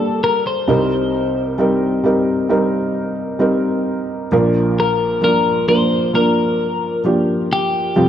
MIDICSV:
0, 0, Header, 1, 3, 480
1, 0, Start_track
1, 0, Key_signature, -2, "major"
1, 0, Tempo, 909091
1, 363, Time_signature, 4, 2, 24, 8
1, 4270, End_track
2, 0, Start_track
2, 0, Title_t, "Clean electric guitar"
2, 0, Program_c, 0, 27
2, 0, Note_on_c, 0, 69, 78
2, 124, Note_off_c, 0, 69, 0
2, 126, Note_on_c, 0, 70, 76
2, 236, Note_off_c, 0, 70, 0
2, 247, Note_on_c, 0, 72, 65
2, 1664, Note_off_c, 0, 72, 0
2, 2534, Note_on_c, 0, 70, 60
2, 2761, Note_off_c, 0, 70, 0
2, 2767, Note_on_c, 0, 70, 74
2, 3000, Note_off_c, 0, 70, 0
2, 3002, Note_on_c, 0, 72, 74
2, 3226, Note_off_c, 0, 72, 0
2, 3248, Note_on_c, 0, 70, 68
2, 3704, Note_off_c, 0, 70, 0
2, 3974, Note_on_c, 0, 67, 88
2, 4270, Note_off_c, 0, 67, 0
2, 4270, End_track
3, 0, Start_track
3, 0, Title_t, "Felt piano"
3, 0, Program_c, 1, 0
3, 0, Control_c, 1, 64, 127
3, 0, Note_on_c, 1, 31, 56
3, 0, Note_on_c, 1, 43, 57
3, 0, Note_on_c, 1, 55, 63
3, 0, Note_on_c, 1, 58, 51
3, 0, Note_on_c, 1, 62, 55
3, 0, Note_on_c, 1, 69, 64
3, 335, Note_off_c, 1, 55, 0
3, 337, Note_off_c, 1, 58, 0
3, 337, Note_off_c, 1, 62, 0
3, 339, Note_off_c, 1, 31, 0
3, 339, Note_off_c, 1, 43, 0
3, 339, Note_off_c, 1, 69, 0
3, 357, Note_on_c, 1, 60, 66
3, 358, Note_on_c, 1, 55, 76
3, 360, Note_on_c, 1, 36, 50
3, 361, Note_on_c, 1, 48, 47
3, 362, Note_on_c, 1, 63, 66
3, 365, Note_on_c, 1, 70, 84
3, 370, Control_c, 1, 64, 0
3, 461, Control_c, 1, 64, 127
3, 816, Note_off_c, 1, 55, 0
3, 816, Note_off_c, 1, 60, 0
3, 818, Note_off_c, 1, 63, 0
3, 820, Note_off_c, 1, 70, 0
3, 836, Note_on_c, 1, 55, 68
3, 838, Note_on_c, 1, 60, 61
3, 842, Note_on_c, 1, 63, 62
3, 846, Note_on_c, 1, 70, 71
3, 1067, Note_off_c, 1, 55, 0
3, 1068, Note_off_c, 1, 60, 0
3, 1070, Note_off_c, 1, 63, 0
3, 1073, Note_off_c, 1, 70, 0
3, 1075, Note_on_c, 1, 55, 69
3, 1079, Note_on_c, 1, 60, 57
3, 1085, Note_on_c, 1, 63, 59
3, 1085, Note_on_c, 1, 70, 71
3, 1307, Note_off_c, 1, 55, 0
3, 1309, Note_off_c, 1, 60, 0
3, 1312, Note_off_c, 1, 63, 0
3, 1312, Note_off_c, 1, 70, 0
3, 1315, Note_on_c, 1, 55, 70
3, 1317, Note_on_c, 1, 60, 62
3, 1322, Note_on_c, 1, 63, 66
3, 1323, Note_on_c, 1, 70, 74
3, 1775, Note_off_c, 1, 55, 0
3, 1776, Note_off_c, 1, 60, 0
3, 1778, Note_off_c, 1, 63, 0
3, 1779, Note_off_c, 1, 70, 0
3, 1790, Note_on_c, 1, 55, 68
3, 1794, Note_on_c, 1, 60, 63
3, 1797, Note_on_c, 1, 63, 65
3, 1802, Note_on_c, 1, 70, 72
3, 2253, Note_off_c, 1, 55, 0
3, 2254, Note_off_c, 1, 60, 0
3, 2256, Note_off_c, 1, 63, 0
3, 2258, Note_off_c, 1, 70, 0
3, 2260, Note_off_c, 1, 36, 0
3, 2261, Note_off_c, 1, 48, 0
3, 2279, Note_on_c, 1, 58, 73
3, 2280, Note_on_c, 1, 53, 88
3, 2281, Note_on_c, 1, 46, 57
3, 2283, Note_on_c, 1, 34, 57
3, 2284, Note_on_c, 1, 62, 75
3, 2286, Note_on_c, 1, 70, 91
3, 2289, Control_c, 1, 64, 0
3, 2381, Control_c, 1, 64, 127
3, 2737, Note_off_c, 1, 53, 0
3, 2737, Note_off_c, 1, 58, 0
3, 2740, Note_off_c, 1, 62, 0
3, 2740, Note_off_c, 1, 70, 0
3, 2751, Note_on_c, 1, 53, 57
3, 2754, Note_on_c, 1, 58, 49
3, 2757, Note_on_c, 1, 62, 50
3, 2762, Note_on_c, 1, 65, 62
3, 2985, Note_off_c, 1, 53, 0
3, 2986, Note_off_c, 1, 58, 0
3, 2988, Note_off_c, 1, 62, 0
3, 2990, Note_off_c, 1, 65, 0
3, 2997, Note_on_c, 1, 53, 50
3, 3003, Note_on_c, 1, 62, 52
3, 3004, Note_on_c, 1, 58, 52
3, 3009, Note_on_c, 1, 70, 63
3, 3228, Note_off_c, 1, 53, 0
3, 3231, Note_off_c, 1, 58, 0
3, 3231, Note_off_c, 1, 62, 0
3, 3234, Note_off_c, 1, 70, 0
3, 3238, Note_on_c, 1, 53, 56
3, 3243, Note_on_c, 1, 58, 53
3, 3246, Note_on_c, 1, 62, 55
3, 3248, Note_on_c, 1, 70, 65
3, 3696, Note_off_c, 1, 53, 0
3, 3699, Note_off_c, 1, 58, 0
3, 3700, Note_off_c, 1, 62, 0
3, 3701, Note_off_c, 1, 70, 0
3, 3719, Note_on_c, 1, 53, 58
3, 3720, Note_on_c, 1, 58, 51
3, 3724, Note_on_c, 1, 62, 54
3, 3728, Note_on_c, 1, 67, 64
3, 4177, Note_off_c, 1, 53, 0
3, 4177, Note_off_c, 1, 58, 0
3, 4179, Note_off_c, 1, 62, 0
3, 4181, Note_off_c, 1, 46, 0
3, 4181, Note_off_c, 1, 67, 0
3, 4182, Note_off_c, 1, 34, 0
3, 4203, Note_on_c, 1, 53, 76
3, 4203, Note_on_c, 1, 55, 64
3, 4204, Note_on_c, 1, 29, 46
3, 4204, Note_on_c, 1, 41, 49
3, 4209, Note_on_c, 1, 60, 65
3, 4210, Control_c, 1, 64, 0
3, 4210, Note_on_c, 1, 67, 78
3, 4270, Note_off_c, 1, 29, 0
3, 4270, Note_off_c, 1, 41, 0
3, 4270, Note_off_c, 1, 53, 0
3, 4270, Note_off_c, 1, 55, 0
3, 4270, Note_off_c, 1, 60, 0
3, 4270, Note_off_c, 1, 67, 0
3, 4270, End_track
0, 0, End_of_file